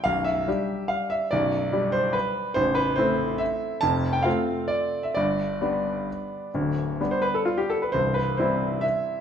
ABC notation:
X:1
M:3/4
L:1/16
Q:1/4=137
K:Gmix
V:1 name="Grand piano"
f2 e6 f2 e2 | d6 c2 B4 | c2 B2 c4 e4 | a3 g f4 d3 e |
d12- | d4- d c B A F G A B | c2 B2 c4 e4 |]
V:2 name="Grand piano" clef=bass
[B,,,,B,,,]4 [G,DG]8 | [B,,,,B,,,]4 [G,DG]8 | [A,,,,A,,,]4 [A,CE]8 | [F,,,F,,]4 [A,CF]8 |
[G,,,G,,]4 [G,B,D]8 | [D,,,D,,]4 [G,B,D]8 | [C,,,C,,]4 [G,CE]8 |]